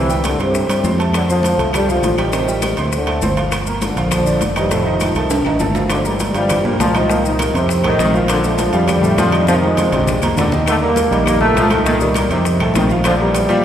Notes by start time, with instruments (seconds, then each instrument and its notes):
Already playing: fingered electric bass C2, trombone section C3 E3
0.09 grand piano G3 G4 G5, high bongo, maracas
0.24 trombone section A#2 D3, high bongo, high conga, high timbale, maracas
0.39 fingered electric bass G2, trombone section A2 C3, grand piano C4 C5 C6, high timbale, maracas
0.54 high bongo, high conga, maracas
0.68 fingered electric bass G2, grand piano G3 G4 G5, high bongo, high conga, high timbale, maracas
0.83 fingered electric bass F2, grand piano C4 C5 C6, high bongo, low bongo, high conga, low timbale, maracas
0.98 grand piano A3 A4 A5, high bongo, high conga, high timbale, maracas
1.13 trombone section A2 D3, high bongo, high conga, high timbale, claves, maracas
1.28 trombone section D3 F3, grand piano C4 C5 C6, high bongo, high conga, maracas
1.43 high bongo, high conga, high timbale, maracas
1.58 fingered electric bass C2, grand piano A3 A4 A5, high conga, high timbale, maracas
1.73 trombone section D3 G3, high bongo, high conga, low conga, high timbale, claves, maracas
1.88 trombone section D3 F3, grand piano F3 F4 F5, high bongo, high conga, maracas
2.03 fingered electric bass A1, high bongo, low bongo, high conga, high timbale, maracas
2.18 trombone section A2 D#3, grand piano G3 G4 G5, high bongo, high timbale, claves, maracas
2.32 grand piano C3 C4 C5, high bongo, high conga, high timbale, maracas
2.48 grand piano G3 G4 G5, high bongo, high conga, maracas
2.62 high bongo, high conga, high timbale, claves, maracas
2.77 fingered electric bass D2, trombone section A2 C3, grand piano C4 C5 C6, high timbale, maracas
2.92 trombone section A2 D3, high bongo, high conga, maracas
3.07 grand piano A3 A4 A5, high bongo, high timbale, claves
3.22 fingered electric bass G1, grand piano C4 C5 C6, high bongo, low bongo, high conga, low timbale, maracas
3.37 grand piano F3 F4 F5, high bongo, high conga, high timbale, maracas
3.52 high bongo, high conga, high timbale, claves, maracas
3.67 grand piano A#3 A#4 A#5, high bongo, high conga, maracas
3.82 trombone section A#2 D3, high bongo, high conga, high timbale, maracas
3.96 fingered electric bass A#1, grand piano F3 F4 F5, high conga, high timbale, maracas
4.11 trombone section D3 F3, high bongo, high conga, low conga, high timbale, claves, maracas
4.26 grand piano D3 D4 D5, high bongo, high conga, maracas
4.41 fingered electric bass F1, high bongo, low bongo, high conga, high timbale, maracas
4.56 grand piano D#3 D#4 D#5, trombone section E3 G3, high bongo, high timbale, claves, maracas
4.71 grand piano A2 A3 A4, trombone section C3 F3, high bongo, high conga, high timbale, maracas
4.86 grand piano D#3 D#4 D#5, high bongo, high conga
5.00 high bongo, high conga, high timbale, claves, maracas
5.15 fingered electric bass C2, trombone section C3 D#3, grand piano A3 A4 A5, high timbale, maracas
5.30 high bongo, high conga, high timbale, maracas
5.45 fingered electric bass A1, grand piano D#3 D#4 D#5, high conga, high timbale, claves
5.59 fingered electric bass G1, grand piano A3 A4 A5, low bongo, high conga, low timbale, maracas
5.75 grand piano F3 F4 F5, low bongo, high conga, low timbale, maracas
5.90 trombone section D3 F3, high bongo, high conga, high timbale, claves, maracas
6.05 trombone section E3 G3, grand piano A#3 A#4 A#5, high conga, maracas
6.20 high bongo, high conga, high timbale, low timbale, maracas
6.34 fingered electric bass G2, trombone section E3 G3, grand piano F3 F4 F5, high conga, high timbale, maracas
6.49 high bongo, high conga, low conga, high timbale, claves, maracas
6.64 grand piano A#2 A#3 A#4, trombone section D3 F3, high conga, low conga
6.79 fingered electric bass C2, trombone section D3 F3, high bongo, low bongo, high conga, high timbale, low timbale, maracas
6.94 trombone section C3 F3, grand piano D#3 D#4 D#5, high conga, high timbale, claves, maracas
7.08 grand piano A#2 A#3 A#4, trombone section D#3, high bongo, high conga, maracas
7.24 trombone section C3 D#3, grand piano D#3 D#4 D#5, high bongo, high conga, maracas
7.39 grand piano A#3 A#4 A#5, high bongo, high conga, high timbale, low timbale, claves, maracas
7.53 fingered electric bass F2, trombone section A2 C3, grand piano C3 C4 C5, high timbale, maracas
7.69 high bongo, high conga, maracas
7.84 fingered electric bass C2, grand piano A2 A3 A4, trombone section C3 D#3, high bongo, high timbale, claves
7.98 fingered electric bass A#1, grand piano C3 C4 C5, trombone section D#3, high bongo, low bongo, high conga, high timbale, low timbale, maracas
8.14 grand piano F3 F4 F5, high bongo, high conga, maracas
8.28 trombone section A#2 D3, high bongo, high timbale, claves, maracas
8.44 trombone section D3 F3, grand piano A3 A4 A5, high conga, maracas
8.58 high bongo, high conga, high timbale, low timbale, maracas
8.73 fingered electric bass F2, grand piano F3 F4 F5, trombone section G3, high conga, high timbale, maracas
8.88 trombone section D3 G3, high bongo, high conga, low conga, high timbale, claves, maracas
9.02 grand piano A2 A3 A4, high conga, low conga, maracas
9.18 fingered electric bass F2, trombone section F3, high bongo, low bongo, high conga, high timbale, low timbale, maracas
9.32 grand piano D#3 D#4 D#5, high conga, high timbale, claves, maracas
9.47 grand piano C3 C4 C5, trombone section C3 D#3 F3, high bongo, high conga, maracas
9.62 grand piano D#3 D#4 D#5, trombone section F3 G#3, high bongo
9.77 grand piano C4 C5 C6, high bongo, low conga, high timbale, low timbale, claves, maracas
9.92 fingered electric bass A#1, trombone section C3, grand piano D3 D4 D5, low conga, high timbale, maracas
10.07 high bongo, low conga, maracas
10.22 fingered electric bass C2, grand piano A#2 A#3 A#4, high bongo, low conga, high timbale, claves, maracas
10.37 fingered electric bass D#2, grand piano D3 D4 D5, trombone section D3, high bongo, low bongo, low conga, high timbale, low timbale, maracas
10.52 grand piano D#3 D#4 D#5, high bongo, low conga, maracas
10.66 trombone section D3 D#3 A3, high bongo, high conga, high timbale, claves, maracas
10.81 trombone section G3 A#3, grand piano A#3 A#4 A#5, high conga
10.96 high bongo, high conga, high timbale, low timbale, maracas
11.11 fingered electric bass A#1, grand piano D#3 D#4 D#5, trombone section G3, high conga, high timbale, maracas
11.25 trombone section G3 A#3, high bongo, high conga, low conga, high timbale, claves, maracas
11.40 grand piano A#2 A#3 A#4, trombone section F3 A3, high conga, low conga
11.55 fingered electric bass C2, trombone section F3, high bongo, low bongo, high conga, high timbale, low timbale, maracas
11.70 grand piano D#3 D#4 D#5, trombone section D#3 A3, high conga, high timbale, claves, maracas
11.85 grand piano A#2 A#3 A#4, trombone section D#3, high bongo, high conga, maracas
12.00 grand piano D#3 D#4 D#5, trombone section D#3 G3, high bongo, high conga, maracas
12.14 grand piano A#3 A#4 A#5, high bongo, high conga, high timbale, low timbale, claves, maracas
12.30 fingered electric bass F2, trombone section C3 D#3, grand piano C3 C4 C5, high timbale, maracas
12.45 high bongo, high conga, maracas
12.60 fingered electric bass C2, grand piano A2 A3 A4, high bongo, high conga, high timbale, claves
12.74 fingered electric bass A#1, grand piano C3 C4 C5, trombone section D#3, high bongo, low bongo, high conga, high timbale, low timbale, maracas
12.90 grand piano F3 F4 F5, high bongo, high conga, maracas
13.04 trombone section D3 F3, high bongo, high conga, high timbale, claves, maracas
13.20 trombone section E3 G3, grand piano A#3 A#4 A#5, high conga
13.34 high bongo, high conga, high timbale, low timbale, maracas
13.49 fingered electric bass A#2, grand piano F3 F4 F5, trombone section G3, high conga, high timbale, maracas